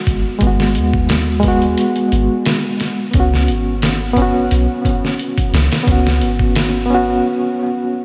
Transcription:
Already playing: reed electric piano G#3 B3 F#4
0.07 808-style bass G#1, kick, closed hi-hat
0.39 808-style bass G#1, reed electric piano G#3 B3, kick, closed hi-hat
0.47 reed electric piano F#4
0.60 snare
0.75 808-style bass D#2, closed hi-hat
0.94 kick
1.09 snare, closed hi-hat
1.40 reed electric piano G#3, kick, closed hi-hat
1.44 reed electric piano B3
1.48 reed electric piano F#4
1.62 closed hi-hat
1.78 closed hi-hat
1.96 closed hi-hat
2.12 808-style bass G#1, closed hi-hat
2.46 snare, closed hi-hat
2.80 snare, closed hi-hat
3.11 808-style bass C#2, reed electric piano B3, kick, closed hi-hat
3.15 reed electric piano C#4
3.20 reed electric piano F#4
3.34 snare
3.48 808-style bass G#1, closed hi-hat
3.82 snare, closed hi-hat
4.13 reed electric piano B3, kick, closed hi-hat
4.18 reed electric piano C#4
4.22 reed electric piano F#4
4.51 808-style bass B1, closed hi-hat
4.85 kick, closed hi-hat
5.05 snare
5.19 closed hi-hat
5.38 kick, closed hi-hat
5.53 808-style bass C#2, snare, closed hi-hat
5.72 snare, closed hi-hat
5.83 reed electric piano B3, kick
5.87 808-style bass C#2, reed electric piano C#4, closed hi-hat
5.92 reed electric piano F#4
6.07 snare
6.22 808-style bass G#1, closed hi-hat
6.39 kick
6.55 snare, closed hi-hat
6.86 reed electric piano B3
6.90 reed electric piano C#4
6.94 reed electric piano F#4

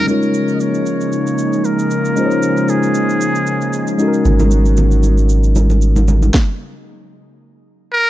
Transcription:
Already playing: tine electric piano G#3 D#4 A#4
0.07 analog synth pad C#3 F3 G#3 A#3 D#4, tine electric piano G#3 C#4 D#4 F4 A#4, muted trumpet C#5, shaker
0.22 shaker
0.34 shaker
0.48 shaker
0.55 muted trumpet D#5
0.60 muted trumpet C#5, shaker
0.74 shaker
0.86 shaker
1.01 shaker
1.12 shaker
1.27 shaker
1.38 shaker
1.53 shaker
1.65 muted trumpet A#4, shaker
1.79 shaker
1.91 shaker
2.05 shaker
2.16 tine electric piano G#3 C#4 D#4 F4 C5, shaker
2.26 tine electric piano C#5
2.31 shaker
2.43 shaker
2.57 shaker
2.68 muted trumpet G#4, shaker
2.83 shaker
2.95 shaker
3.09 shaker
3.21 shaker
3.35 shaker
3.47 shaker
3.61 shaker
3.73 shaker
3.87 shaker
3.98 analog synth pad F#3, tine electric piano G#3 C#4 D#4 F#4 A4, shaker
4.08 tine electric piano A#4
4.13 shaker
4.25 sub bass G#1, low conga, shaker
4.39 high conga, shaker
4.51 shaker
4.65 shaker
4.77 low conga, shaker
4.91 shaker
5.03 high conga, shaker
5.18 shaker
5.29 shaker
5.44 shaker
5.55 high conga, shaker
5.70 high conga, shaker
5.82 shaker
5.96 high conga, shaker
6.08 high conga, low conga, shaker
6.22 high conga, shaker
6.34 kick, snare
7.92 muted trumpet A#4

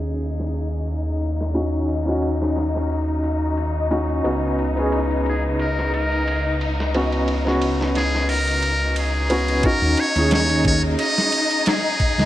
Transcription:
Already playing: detuned saw bass D#2, felt piano C#4 D#4 F#4 G#4, string section D#4, muted trumpet G#4
0.20 ride
0.40 snare
0.54 ride
0.72 ride
0.88 ride
1.22 ride
1.41 snare
1.54 felt piano C#4 D#4 F#4, ride
1.74 ride
1.89 ride
2.05 felt piano C#4 D#4 F#4, snare
2.22 ride
2.42 snare
2.56 snare, ride
2.75 snare
2.90 open hi-hat
3.08 ride
3.24 ride
3.57 ride
3.90 felt piano C#4 D#4 F#4, ride
4.09 ride
4.24 detuned saw bass C#2, felt piano B3 C#4 F#4, ride
4.59 ride
4.76 felt piano B3 C#4 G#4, ride
4.92 ride
5.11 ride
5.26 muted trumpet G#4, ride
5.59 muted trumpet A#4, ride
5.79 snare
5.94 muted trumpet A#4, ride
6.12 ride
6.28 ride
6.61 ride
6.80 snare
6.94 felt piano B3 C#4 F#4, ride
7.12 ride
7.28 ride
7.45 felt piano B3 C#4 F#4, snare
7.62 ride
7.81 snare
7.95 muted trumpet G#4, snare, ride
8.15 snare
8.29 muted trumpet A#4, open hi-hat
8.48 ride
8.63 ride
8.96 muted trumpet G#4, ride
9.30 felt piano B3 C#4 F#4, ride
9.48 ride
9.63 felt piano C#4 D#4 F#4, string section D#4, muted trumpet A#4, kick, ride
9.82 detuned saw bass D#2
9.97 muted trumpet C#5, ride
10.16 detuned saw bass D#2, felt piano C#4 D#4 G#4, ride
10.31 muted trumpet C#5, snare, ride
10.49 ride
10.65 muted trumpet C#5, kick, ride
10.99 muted trumpet D#5, ride
11.18 snare
11.32 ride
11.51 ride
11.66 muted trumpet G#4, snare, ride
12.00 kick, ride
12.18 detuned saw bass C#2, snare

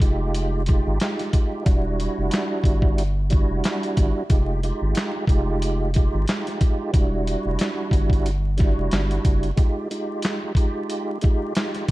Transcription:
0.00 analog synth bass F1, tonewheel organ G#3 D#4 F4 G4, kick, closed hi-hat
0.34 closed hi-hat
0.66 tonewheel organ G#3 D#4 F4 G4, kick, closed hi-hat
0.86 analog synth bass G#1
1.00 tonewheel organ G#3 D#4 F4 G4, snare, clap, closed hi-hat
1.19 snare, closed hi-hat
1.32 tonewheel organ G#3 D#4 F4 G4, kick, closed hi-hat
1.65 analog synth bass E1, tonewheel organ G3 D4 E4 F#4, kick, closed hi-hat
2.00 closed hi-hat
2.18 analog synth bass F1
2.31 snare, clap, closed hi-hat
2.64 analog synth bass G1, kick, closed hi-hat
2.82 kick
2.98 closed hi-hat
3.30 tonewheel organ G3 D4 E4 F#4, kick, closed hi-hat
3.50 analog synth bass F1
3.64 snare, clap, closed hi-hat
3.83 closed hi-hat
3.97 analog synth bass G1, kick, closed hi-hat
4.29 analog synth bass F1, tonewheel organ G#3 D#4 F4 G4, kick, closed hi-hat
4.63 tonewheel organ G#3 D#4 F4 G4, closed hi-hat
4.82 analog synth bass G#1
4.95 snare, clap, closed hi-hat
5.27 analog synth bass F1, tonewheel organ G#3 D#4 F4 G4, kick, closed hi-hat
5.62 closed hi-hat
5.94 tonewheel organ G#3 D#4 F4 G4, kick, closed hi-hat
6.14 analog synth bass G#1
6.28 tonewheel organ G#3 D#4 F4 G4, snare, clap, closed hi-hat
6.47 snare, closed hi-hat
6.60 tonewheel organ G#3 D#4 F4 G4, kick, closed hi-hat
6.92 analog synth bass E1, tonewheel organ G3 D4 E4 F#4, kick, closed hi-hat
7.27 closed hi-hat
7.46 analog synth bass F1
7.59 snare, clap, closed hi-hat
7.91 analog synth bass G1, kick, closed hi-hat
8.10 kick, closed hi-hat
8.26 closed hi-hat
8.57 tonewheel organ G3 D4 E4 F#4, kick, snare, closed hi-hat
8.78 analog synth bass F1
8.91 analog synth bass G1, snare, clap, closed hi-hat
9.11 closed hi-hat
9.25 analog synth bass F#1, kick, closed hi-hat
9.43 closed hi-hat
9.56 tonewheel organ G#3 D#4 F4 G4, kick, closed hi-hat
9.91 tonewheel organ G#3 D#4 F4 G4, closed hi-hat
10.22 snare, clap, closed hi-hat
10.55 tonewheel organ G#3 D#4 F4 G4, kick, closed hi-hat
10.90 closed hi-hat
11.21 tonewheel organ G#3 D#4 F4 G4, kick, closed hi-hat
11.55 tonewheel organ G#3 D#4 F4 G4, snare, clap, closed hi-hat
11.75 snare, closed hi-hat
11.87 tonewheel organ G#3 D#4 F4

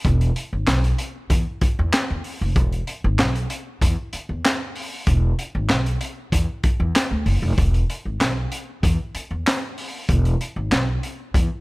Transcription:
0.05 upright bass E1, kick, closed hi-hat
0.21 closed hi-hat
0.36 closed hi-hat
0.53 upright bass G#1
0.67 upright bass B1, snare, clap, closed hi-hat
0.84 closed hi-hat
0.98 closed hi-hat
1.30 upright bass E2, kick, closed hi-hat
1.61 muted upright bass stroke, kick, closed hi-hat
1.79 upright bass E2
1.93 snare, clap, closed hi-hat
2.10 upright bass E2
2.24 open hi-hat
2.41 upright bass F1
2.56 upright bass E1, kick, closed hi-hat
2.72 closed hi-hat
2.87 closed hi-hat
3.04 upright bass G#1
3.18 upright bass B1, snare, clap, closed hi-hat
3.35 closed hi-hat
3.50 closed hi-hat
3.81 upright bass E2, kick, closed hi-hat
4.13 muted upright bass stroke, closed hi-hat
4.29 upright bass E2
4.45 snare, clap, closed hi-hat
4.75 open hi-hat
5.07 upright bass E1, kick, closed hi-hat
5.39 closed hi-hat
5.55 upright bass G#1
5.69 upright bass B1, snare, clap, closed hi-hat
5.86 closed hi-hat
6.01 closed hi-hat
6.32 upright bass E2, kick, closed hi-hat
6.64 muted upright bass stroke, kick, closed hi-hat
6.80 upright bass E2
6.95 snare, clap, closed hi-hat
7.11 upright bass D2
7.26 upright bass F#1, open hi-hat
7.42 upright bass F1
7.58 upright bass E1, kick, closed hi-hat
7.74 closed hi-hat
7.90 closed hi-hat
8.05 upright bass G#1
8.20 upright bass B1, snare, clap, closed hi-hat
8.52 closed hi-hat
8.83 upright bass E2, kick, closed hi-hat
9.14 muted upright bass stroke, closed hi-hat
9.31 upright bass E2
9.47 snare, clap, closed hi-hat
9.78 open hi-hat
10.09 upright bass E1, kick, closed hi-hat
10.25 closed hi-hat
10.41 closed hi-hat
10.56 upright bass G#1
10.71 upright bass B1, snare, clap, closed hi-hat
11.03 closed hi-hat
11.34 upright bass E2, kick, closed hi-hat

